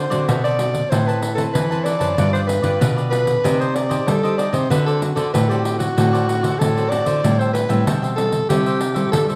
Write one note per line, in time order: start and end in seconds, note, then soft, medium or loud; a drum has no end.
0.00 0.25 D3 medium
0.00 0.29 C5 medium
0.10 0.25 D3 medium
0.10 0.54 A3 medium
0.10 0.54 C4 medium
0.10 0.55 F#4 medium
0.10 0.27 A4 medium
0.10 0.26 C5 medium
0.10 0.26 D5 medium
0.10 pandeiro medium
0.27 0.88 A2 medium
0.27 0.82 B2 medium
0.27 0.42 F#4 soft
0.27 0.43 A4 medium
0.27 0.43 B4 medium
0.27 0.43 C5 medium
0.27 0.43 D5 medium
0.27 pandeiro medium
0.44 0.90 A4 medium
0.44 0.91 C5 medium
0.44 0.90 D5 medium
0.44 0.92 D5 medium
0.44 pandeiro soft
0.59 0.78 A3 medium
0.59 0.78 C4 medium
0.59 0.79 F#4 medium
0.59 pandeiro medium
0.74 pandeiro medium
0.90 1.45 A2 loud
0.90 1.52 A3 medium
0.90 1.22 C4 medium
0.90 1.22 E4 medium
0.90 1.06 A4 soft
0.90 1.06 B4 medium
0.90 1.22 B4 medium
0.90 1.08 C5 medium
0.90 1.06 C5 soft
0.90 1.06 A5 soft
0.90 pandeiro medium
1.07 1.34 B4 medium
1.07 1.21 B4 medium
1.07 1.21 C5 medium
1.07 1.21 A5 medium
1.07 pandeiro soft
1.22 muted cavaquinho stroke soft
1.22 pandeiro medium
1.35 1.65 C4 medium
1.35 1.65 E4 medium
1.35 1.43 A4 medium
1.35 1.69 B4 medium
1.35 1.65 B4 medium
1.35 1.69 C5 medium
1.35 1.68 A5 medium
1.35 pandeiro medium
1.53 2.15 E3 medium
1.53 1.95 E3 medium
1.53 1.86 B4 medium
1.53 pandeiro medium
1.71 2.13 C4 medium
1.71 2.14 E4 medium
1.71 1.85 B4 medium
1.71 2.14 B4 medium
1.71 1.84 C5 medium
1.71 1.85 A5 medium
1.71 pandeiro soft
1.84 2.00 A4 soft
1.84 1.99 B4 medium
1.84 2.00 C5 medium
1.84 2.32 D5 medium
1.84 1.99 A5 soft
1.84 pandeiro medium
2.00 2.15 F#2 medium
2.00 2.16 B4 medium
2.00 2.17 C5 medium
2.00 2.16 A5 medium
2.00 pandeiro medium
2.17 2.58 G2 loud
2.17 2.78 G3 medium
2.17 2.60 D4 medium
2.17 2.32 F4 soft
2.17 2.60 F4 medium
2.17 2.32 G4 soft
2.17 2.33 B4 medium
2.17 2.61 B4 medium
2.17 2.32 D5 medium
2.17 pandeiro medium
2.33 2.47 G4 soft
2.33 2.47 B4 medium
2.33 2.40 C5 medium
2.33 2.47 D5 medium
2.33 pandeiro soft
2.47 2.93 B4 medium
2.47 muted cavaquinho stroke soft
2.47 pandeiro medium
2.62 2.78 G2 medium
2.62 3.07 D4 medium
2.62 3.07 F4 medium
2.62 2.79 G4 medium
2.62 2.79 B4 medium
2.62 3.07 B4 medium
2.62 2.78 D5 medium
2.62 pandeiro medium
2.80 3.35 B2 loud
2.80 3.41 D3 medium
2.80 2.95 F4 medium
2.80 2.96 G4 medium
2.80 2.96 B4 medium
2.80 2.95 D5 medium
2.80 pandeiro medium
2.96 3.43 G4 medium
2.96 3.43 B4 medium
2.96 3.43 D5 medium
2.96 pandeiro soft
3.11 3.31 D4 medium
3.11 3.31 F4 medium
3.11 3.62 B4 loud
3.11 3.31 B4 medium
3.11 pandeiro medium
3.27 pandeiro medium
3.43 3.98 C3 loud
3.43 4.04 C4 medium
3.43 3.58 D4 soft
3.43 3.74 D#4 medium
3.43 3.59 G4 soft
3.43 3.74 G4 medium
3.43 3.59 C5 soft
3.43 3.74 D5 medium
3.43 3.58 D#5 medium
3.43 pandeiro medium
3.60 3.74 G4 medium
3.60 3.77 C5 medium
3.60 3.74 C5 medium
3.60 3.75 D#5 medium
3.60 pandeiro soft
3.75 4.09 D5 medium
3.75 muted cavaquinho stroke soft
3.75 pandeiro medium
3.89 4.18 D#4 medium
3.89 4.18 G4 medium
3.89 4.22 G4 soft
3.89 4.21 C5 medium
3.89 4.18 D5 medium
3.89 4.21 D#5 medium
3.89 pandeiro medium
4.07 4.48 G3 medium
4.07 4.68 G3 medium
4.07 4.37 A4 medium
4.07 pandeiro medium
4.23 4.66 D#4 medium
4.23 4.66 G4 medium
4.23 4.37 G4 medium
4.23 4.38 C5 medium
4.23 4.66 D5 medium
4.23 4.38 D#5 medium
4.23 pandeiro soft
4.38 4.53 D4 soft
4.38 4.53 G4 soft
4.38 4.52 C5 medium
4.38 4.51 D5 medium
4.38 4.51 D#5 medium
4.38 pandeiro medium
4.51 4.67 C3 medium
4.51 4.69 G4 medium
4.51 4.70 C5 medium
4.51 4.69 C5 medium
4.51 4.55 D5 medium
4.51 4.68 D#5 medium
4.51 pandeiro medium
4.70 5.31 D3 medium
4.70 5.11 D3 medium
4.70 4.97 A3 soft
4.70 4.97 C4 medium
4.70 4.85 F#4 soft
4.70 4.98 F#4 medium
4.70 4.85 A4 soft
4.70 4.85 B4 medium
4.70 4.86 C5 medium
4.70 4.86 D5 medium
4.70 pandeiro medium
4.87 5.01 A4 medium
4.87 5.00 A4 soft
4.87 5.01 C5 medium
4.87 5.01 D5 medium
4.87 pandeiro soft
5.01 5.44 A3 medium
5.01 5.44 C4 medium
5.01 5.45 F#4 medium
5.01 muted cavaquinho stroke soft
5.01 pandeiro medium
5.15 5.31 D3 medium
5.15 5.31 A4 medium
5.15 5.33 A4 medium
5.15 5.32 C5 medium
5.15 5.32 D5 medium
5.15 pandeiro medium
5.33 5.94 A2 medium
5.33 5.88 A2 medium
5.33 5.48 F#4 soft
5.33 5.49 A4 medium
5.33 5.50 B4 medium
5.33 5.49 C5 soft
5.33 5.48 D5 medium
5.33 pandeiro medium
5.49 5.77 A3 medium
5.49 5.77 C4 medium
5.49 5.77 F#4 medium
5.49 5.79 G4 medium
5.49 5.96 A4 medium
5.49 5.96 C5 medium
5.49 5.96 D5 medium
5.49 pandeiro soft
5.65 pandeiro medium
5.79 5.91 A3 medium
5.79 5.92 C4 medium
5.79 6.61 F#4 medium
5.79 5.92 F#4 medium
5.79 pandeiro medium
5.96 6.51 A2 medium
5.96 6.57 D3 medium
5.96 6.16 A3 medium
5.96 6.16 C4 medium
5.96 6.11 F#4 soft
5.96 6.16 F#4 medium
5.96 6.12 A4 soft
5.96 6.12 C5 medium
5.96 6.12 D5 medium
5.96 pandeiro medium
6.13 6.27 A4 medium
6.13 6.28 C5 medium
6.13 6.27 D5 medium
6.13 pandeiro soft
6.28 6.47 A3 medium
6.28 6.47 C4 medium
6.28 6.47 F#4 medium
6.28 muted cavaquinho stroke soft
6.28 pandeiro medium
6.42 6.75 A4 soft
6.42 6.74 C5 medium
6.42 6.74 D5 medium
6.42 pandeiro medium
6.59 7.20 A2 medium
6.59 7.01 A2 medium
6.59 6.71 A3 soft
6.59 6.71 C4 medium
6.59 6.72 F#4 medium
6.59 6.91 A4 medium
6.59 pandeiro medium
6.77 6.87 A3 medium
6.77 6.88 C4 medium
6.77 6.88 F#4 medium
6.77 6.90 A4 medium
6.77 6.91 C5 medium
6.77 6.91 D5 medium
6.77 pandeiro soft
6.90 7.12 A3 medium
6.90 7.12 C4 medium
6.90 7.06 F#4 soft
6.90 7.12 F#4 medium
6.90 7.06 A4 soft
6.90 7.05 C5 soft
6.90 7.40 D5 medium
6.90 7.04 D5 medium
6.90 pandeiro medium
7.05 7.20 D3 medium
7.05 7.22 A4 soft
7.05 7.22 C5 medium
7.05 7.21 D5 medium
7.05 pandeiro medium
7.23 7.83 A2 medium
7.23 7.64 A2 medium
7.23 7.66 G3 medium
7.23 7.66 C4 medium
7.23 7.66 E4 medium
7.23 7.38 A4 soft
7.23 7.38 C5 soft
7.23 7.39 E5 soft
7.23 7.38 G5 medium
7.23 pandeiro medium
7.39 7.52 C5 medium
7.39 7.54 C5 soft
7.39 7.54 E5 medium
7.39 7.54 G5 medium
7.39 pandeiro soft
7.53 7.88 B4 medium
7.53 muted cavaquinho stroke soft
7.53 pandeiro medium
7.69 7.83 A2 medium
7.69 8.12 G3 medium
7.69 8.13 C4 medium
7.69 8.13 E4 medium
7.69 7.85 C5 soft
7.69 7.85 E5 medium
7.69 7.84 G5 medium
7.69 pandeiro medium
7.86 8.41 B2 medium
7.86 8.47 E3 medium
7.86 8.01 A4 medium
7.86 8.01 C5 medium
7.86 8.02 E5 medium
7.86 8.01 G5 medium
7.86 pandeiro medium
8.02 8.49 C5 soft
8.02 8.49 E5 medium
8.02 8.48 G5 medium
8.02 pandeiro soft
8.16 8.44 G3 soft
8.16 8.45 C4 medium
8.16 8.45 E4 medium
8.16 8.46 A4 medium
8.16 pandeiro medium
8.32 pandeiro medium
8.49 9.10 C3 medium
8.49 9.04 C3 loud
8.49 8.80 G3 medium
8.49 8.80 A3 medium
8.49 8.64 E4 soft
8.49 8.80 E4 medium
8.49 9.09 G4 medium
8.49 8.64 A4 soft
8.49 8.65 C5 soft
8.49 8.65 E5 soft
8.49 pandeiro medium
8.66 8.79 A4 soft
8.66 8.80 C5 medium
8.66 8.80 E5 medium
8.66 pandeiro soft
8.80 muted cavaquinho stroke soft
8.80 pandeiro medium
8.94 9.23 G3 medium
8.94 9.23 A3 medium
8.94 9.23 E4 medium
8.94 9.27 A4 medium
8.94 9.27 C5 medium
8.94 9.26 E5 medium
8.94 pandeiro medium
9.12 9.35 G2 medium
9.12 9.35 G3 medium
9.12 9.26 A4 medium
9.12 pandeiro medium
9.29 9.35 G3 medium
9.29 9.35 A3 medium
9.29 9.35 E4 medium
9.29 9.35 A4 medium
9.29 9.35 C5 medium
9.29 9.35 E5 medium
9.29 pandeiro soft